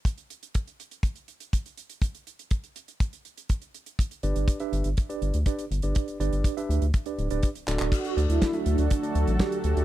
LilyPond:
<<
  \new Staff \with { instrumentName = "Tine electric piano" } { \time 4/4 \key d \major \tempo 4 = 122 r1 | r1 | r8 <d' g' b' d''>8. <d' g' b' e''>8 r8 <d' g' b' d''>8 r16 <d' g' b' d''>16 r8 <d' g' b' d''>16~ | <d' g' b' d''>8 <d' g' b' d''>8. <d' g' b' e''>8 r8 <d' g' b' d''>8 <d' g' b' d''>16 r8 <d' fis' a' d''>8~ |
<d' fis' a' d''>8 <d' fis' a' d''>8. <d' fis' a' e''>8 r8 <d' fis' a' d''>8 r16 <d' fis' a' d''>16 r8 <d' fis' a' d''>16 | }
  \new Staff \with { instrumentName = "Analog polysynth" } { \time 4/4 \key d \major r1 | r1 | r1 | r1 |
fis'8 r16 e'8 r16 d'8. r16 fis'8 g'8 g'8 | }
  \new Staff \with { instrumentName = "Analog synth pad" } { \time 4/4 \key d \major r1 | r1 | r1 | r1 |
<d fis a fis' a'>1 | }
  \new Staff \with { instrumentName = "Analog synth bass" } { \clef bass \time 4/4 \key d \major r1 | r1 | r8 g,,16 g,,16 r8 g,,16 g,,16 r8 g,,16 d,16 r8 g,,16 g,,16 | r8 g,,16 g,,16 r8 d,16 d,16 r8 d,,16 d,,16 r8 d,,16 d,,16 |
r8 d,16 d,16 r8 d,16 d,16 r8 d,16 a,,16 r8 d,16 d,16 | }
  \new DrumStaff \with { instrumentName = "Drums" } \drummode { \time 4/4 <hh bd>16 hh16 hh16 hh16 <hh bd>16 hh16 hh16 hh16 <hh bd>16 hh16 hh16 hh16 <hh bd>16 hh16 hh16 hh16 | <hh bd>16 hh16 hh16 hh16 <hh bd>16 hh16 hh16 hh16 <hh bd>16 hh16 hh16 hh16 <hh bd>16 hh16 hh16 hh16 | <hh bd>16 hh16 hh16 hh16 <hh bd>16 hh16 hh16 hh16 <hh bd>16 hh16 hh16 hh16 <hh bd>16 hh16 hh16 hh16 | <hh bd>16 hh16 hh16 hh16 <hh bd>16 hh16 hh16 hh16 <hh bd>16 hh16 hh16 hh16 <hh bd>16 hh16 <hc hh>16 <hc hh>16 |
<cymc hh bd>16 hh16 hh16 hh16 <hh bd sn>16 hh16 hh16 hh16 <hh bd>16 hh16 hh16 hh16 <hh bd sn>16 hh16 hh16 hh16 | }
>>